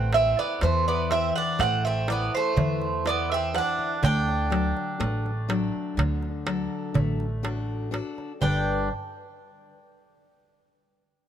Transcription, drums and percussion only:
0.13 darbuka tek
0.37 darbuka tek
0.61 darbuka tek
1.11 darbuka tek
1.60 darbuka tek
2.08 darbuka tek
2.57 darbuka dum
2.81 darbuka tek
3.06 darbuka tek
3.55 darbuka tek
3.79 darbuka tek
4.03 darbuka dum
4.29 darbuka tek
4.52 darbuka tek
4.77 darbuka tek
5.01 darbuka tek
5.26 darbuka tek
5.50 darbuka tek
5.99 darbuka tek, darbuka dum
6.22 darbuka tek
6.47 darbuka tek
6.95 darbuka dum
7.20 darbuka tek
7.45 darbuka tek
7.94 darbuka tek
8.18 darbuka tek
8.42 darbuka dum

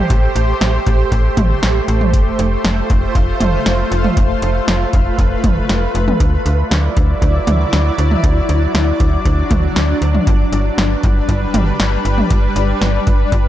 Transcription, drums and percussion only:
0.10 kick, closed hi-hat
0.36 closed hi-hat
0.61 snare, closed hi-hat
0.87 kick, closed hi-hat
1.12 kick, closed hi-hat
1.37 kick, closed hi-hat, mid tom
1.63 snare, closed hi-hat
1.88 closed hi-hat
2.01 mid tom
2.14 kick, closed hi-hat
2.39 closed hi-hat
2.65 snare, closed hi-hat
2.90 kick, closed hi-hat
3.15 kick, closed hi-hat
3.40 closed hi-hat, mid tom
3.66 snare, closed hi-hat
3.92 closed hi-hat
4.04 mid tom
4.17 kick, closed hi-hat
4.42 closed hi-hat
4.68 snare, closed hi-hat
4.93 kick, closed hi-hat
5.18 kick, closed hi-hat
5.44 kick, closed hi-hat, mid tom
5.69 snare, closed hi-hat
5.95 closed hi-hat
6.08 mid tom
6.20 kick, closed hi-hat
6.46 closed hi-hat
6.71 snare, closed hi-hat
6.97 kick, closed hi-hat
7.22 kick, closed hi-hat
7.47 closed hi-hat, mid tom
7.73 snare, closed hi-hat
7.98 closed hi-hat
8.11 mid tom
8.24 kick, closed hi-hat
8.49 closed hi-hat
8.75 snare, closed hi-hat
9.00 kick, closed hi-hat
9.25 kick, closed hi-hat
9.51 kick, closed hi-hat, mid tom
9.76 snare, closed hi-hat
10.02 closed hi-hat
10.15 mid tom
10.27 kick, closed hi-hat
10.53 closed hi-hat
10.78 snare, closed hi-hat
11.03 kick, closed hi-hat
11.29 kick, closed hi-hat
11.54 closed hi-hat, mid tom
11.80 snare, closed hi-hat
12.05 closed hi-hat
12.18 mid tom
12.30 kick, closed hi-hat
12.56 closed hi-hat
12.82 snare, closed hi-hat
13.07 kick, closed hi-hat
13.32 kick, closed hi-hat

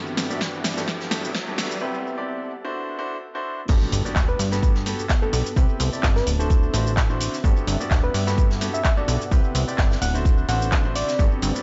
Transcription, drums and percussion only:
0.17 snare, closed hi-hat, open hi-hat, shaker
0.29 closed hi-hat, shaker
0.40 kick, snare, closed hi-hat, shaker
0.64 snare, closed hi-hat, open hi-hat, shaker
0.77 snare, shaker
0.88 kick, snare, closed hi-hat, shaker
1.01 snare
1.11 snare, closed hi-hat, open hi-hat, shaker
1.24 shaker
1.34 kick, snare, closed hi-hat, shaker
1.58 snare, closed hi-hat, open hi-hat, shaker
1.71 shaker
3.68 kick, closed hi-hat, crash, shaker
3.92 closed hi-hat, open hi-hat, shaker
4.06 closed hi-hat, shaker
4.16 kick, snare, clap, closed hi-hat, shaker
4.39 snare, closed hi-hat, open hi-hat, shaker
4.51 snare, shaker
4.63 kick, closed hi-hat, shaker
4.75 snare
4.86 closed hi-hat, open hi-hat, shaker
4.99 shaker
5.09 kick, snare, clap, closed hi-hat, shaker
5.33 closed hi-hat, open hi-hat, shaker
5.46 shaker
5.56 kick, closed hi-hat, shaker
5.80 closed hi-hat, open hi-hat, shaker
5.93 shaker
6.03 kick, snare, clap, closed hi-hat, shaker
6.16 snare
6.27 closed hi-hat, open hi-hat, shaker
6.40 shaker
6.50 kick, closed hi-hat, shaker
6.73 closed hi-hat, open hi-hat, shaker
6.87 shaker
6.97 kick, snare, clap, closed hi-hat, shaker
7.20 closed hi-hat, open hi-hat, shaker
7.34 snare, shaker
7.44 kick, closed hi-hat, shaker
7.67 closed hi-hat, open hi-hat, shaker
7.80 closed hi-hat, shaker
7.91 kick, snare, clap, closed hi-hat, shaker
8.14 snare, closed hi-hat, open hi-hat, shaker
8.26 snare, shaker
8.37 kick, closed hi-hat, shaker
8.50 snare
8.61 closed hi-hat, open hi-hat, shaker
8.75 shaker
8.84 kick, snare, clap, closed hi-hat, shaker
9.08 closed hi-hat, open hi-hat, shaker
9.21 shaker
9.31 kick, closed hi-hat, shaker
9.55 closed hi-hat, open hi-hat, shaker
9.68 shaker
9.78 kick, snare, clap, closed hi-hat, shaker
9.91 snare
10.02 closed hi-hat, open hi-hat, shaker
10.15 shaker
10.25 kick, closed hi-hat, shaker
10.49 closed hi-hat, open hi-hat, shaker
10.62 shaker
10.72 kick, snare, clap, closed hi-hat, shaker
10.95 closed hi-hat, open hi-hat, shaker
11.08 snare, shaker
11.19 kick, closed hi-hat, shaker
11.42 closed hi-hat, open hi-hat, shaker
11.55 closed hi-hat, shaker

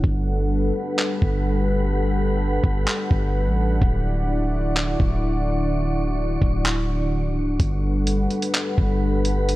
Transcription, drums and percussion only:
0.04 kick
0.99 clap
1.22 kick
2.64 kick
2.88 clap
3.11 kick
3.82 kick
4.77 clap
5.00 kick
6.42 kick
6.66 clap
7.60 kick, closed hi-hat
8.07 closed hi-hat
8.30 closed hi-hat
8.42 closed hi-hat
8.54 clap, closed hi-hat
8.78 kick
9.25 closed hi-hat
9.49 closed hi-hat

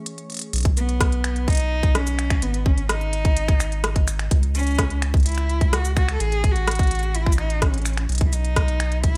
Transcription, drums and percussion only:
0.06 closed hi-hat
0.18 closed hi-hat
0.30 closed hi-hat
0.32 closed hi-hat
0.34 closed hi-hat
0.37 closed hi-hat
0.39 closed hi-hat
0.41 closed hi-hat
0.53 closed hi-hat
0.56 closed hi-hat
0.58 closed hi-hat
0.60 closed hi-hat
0.63 kick, closed hi-hat
0.65 closed hi-hat
0.77 closed hi-hat, cabasa
0.89 closed hi-hat
1.01 kick, cross-stick, closed hi-hat
1.12 closed hi-hat
1.24 finger snap, closed hi-hat
1.36 closed hi-hat
1.48 kick, closed hi-hat
1.50 closed hi-hat
1.52 closed hi-hat
1.55 closed hi-hat
1.57 closed hi-hat
1.60 closed hi-hat
1.83 kick, closed hi-hat
1.95 cross-stick, closed hi-hat
2.07 closed hi-hat, cabasa
2.19 finger snap, closed hi-hat
2.30 finger snap, kick, closed hi-hat
2.42 closed hi-hat
2.54 closed hi-hat
2.66 kick
2.78 closed hi-hat
2.89 cross-stick, closed hi-hat
3.01 closed hi-hat
3.13 closed hi-hat
3.25 kick, closed hi-hat
3.37 closed hi-hat
3.48 finger snap, kick, closed hi-hat
3.60 finger snap, closed hi-hat, cabasa
3.72 closed hi-hat
3.84 cross-stick, closed hi-hat
3.96 kick, closed hi-hat
4.08 finger snap, closed hi-hat, cabasa
4.19 finger snap, closed hi-hat
4.31 kick, closed hi-hat
4.43 closed hi-hat
4.55 closed hi-hat, cabasa
4.59 cabasa
4.63 closed hi-hat, cabasa
4.67 cabasa
4.71 cabasa
4.75 kick, cross-stick, closed hi-hat, cabasa
4.90 closed hi-hat
5.02 finger snap, closed hi-hat
5.14 kick, closed hi-hat
5.17 closed hi-hat
5.20 closed hi-hat
5.23 closed hi-hat
5.26 closed hi-hat
5.29 closed hi-hat
5.32 closed hi-hat
5.35 finger snap, closed hi-hat
5.49 closed hi-hat
5.61 kick, closed hi-hat
5.73 cross-stick, closed hi-hat
5.85 closed hi-hat, cabasa
5.97 finger snap, kick, closed hi-hat
6.09 finger snap, closed hi-hat
6.20 closed hi-hat
6.32 closed hi-hat
6.44 kick, closed hi-hat
6.56 closed hi-hat
6.67 cross-stick, closed hi-hat
6.71 closed hi-hat
6.75 kick, closed hi-hat
6.79 closed hi-hat
6.83 closed hi-hat
6.87 closed hi-hat
6.91 closed hi-hat
6.95 closed hi-hat
6.99 closed hi-hat
7.03 closed hi-hat
7.15 closed hi-hat
7.26 finger snap, kick
7.32 closed hi-hat, cabasa
7.38 finger snap, closed hi-hat
7.50 closed hi-hat
7.62 kick, cross-stick, closed hi-hat
7.74 closed hi-hat
7.78 closed hi-hat
7.82 finger snap, closed hi-hat
7.85 closed hi-hat, cabasa
7.89 closed hi-hat
7.93 closed hi-hat
7.97 finger snap, closed hi-hat
8.09 closed hi-hat
8.12 closed hi-hat
8.15 closed hi-hat
8.18 kick, closed hi-hat
8.33 closed hi-hat, cabasa
8.45 closed hi-hat
8.56 kick, cross-stick, closed hi-hat
8.68 closed hi-hat
8.80 finger snap, closed hi-hat
8.92 closed hi-hat
9.04 kick, closed hi-hat

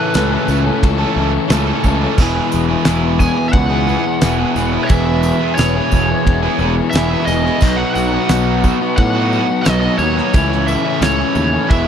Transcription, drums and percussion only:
0.14 snare, ride bell, tambourine
0.48 tambourine
0.83 kick, ride bell, tambourine
1.50 snare, ride bell, tambourine
1.84 kick, tambourine
2.18 kick, crash, tambourine
2.52 tambourine
2.85 snare, ride bell, tambourine
3.20 kick, tambourine
3.53 kick, ride bell
3.89 tambourine
4.21 snare, ride bell, tambourine
4.56 tambourine
4.89 kick, ride bell, tambourine
5.23 tambourine
5.58 snare, ride bell, tambourine
5.91 kick, tambourine
6.27 kick, ride bell
6.59 tambourine
6.93 snare, ride bell, tambourine
7.28 tambourine
7.46 snare
7.61 kick, tambourine, crash
7.95 tambourine
8.29 snare, ride bell, tambourine
8.64 kick, tambourine
8.98 kick, ride bell
9.32 tambourine
9.65 snare, ride bell, tambourine
9.99 tambourine
10.18 snare
10.33 kick, ride bell, tambourine
10.52 snare
10.68 tambourine
11.02 snare, ride bell, tambourine
11.35 tambourine
11.70 kick, ride bell, tambourine

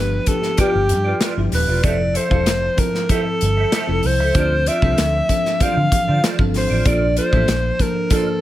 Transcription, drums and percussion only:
0.26 kick, closed hi-hat
0.43 snare
0.57 kick, closed hi-hat
0.89 closed hi-hat
1.21 snare, closed hi-hat
1.52 snare, open hi-hat
1.83 kick, closed hi-hat
2.15 closed hi-hat
2.31 kick
2.46 snare, closed hi-hat
2.78 kick, closed hi-hat
2.95 snare
3.09 kick, closed hi-hat
3.41 closed hi-hat
3.72 snare, closed hi-hat
4.03 open hi-hat
4.35 kick, closed hi-hat
4.66 closed hi-hat
4.82 kick
4.98 snare, closed hi-hat
5.29 kick, closed hi-hat
5.46 snare
5.60 kick, closed hi-hat
5.92 kick, closed hi-hat
6.24 snare, closed hi-hat
6.39 kick
6.54 snare, open hi-hat
6.85 kick, closed hi-hat
7.17 closed hi-hat
7.33 kick
7.48 snare, closed hi-hat
7.79 kick, closed hi-hat
8.10 kick, closed hi-hat

